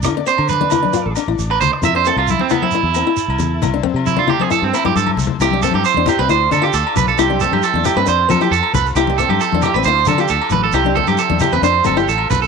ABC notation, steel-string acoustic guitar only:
X:1
M:4/4
L:1/16
Q:1/4=135
K:C
V:1 name="Steel-string acoustic guitar"
E D C2 z D E D F2 D E2 z3 | E D C2 z2 E C E2 C E2 z3 | E D C2 z D E C E2 C E2 z3 | E D C2 z D E C E2 D F2 z3 |
E D C2 z D E C D2 C E2 z3 | E z C2 z D E C E2 D F2 z3 | E D z3 D E C D2 C E2 z3 |]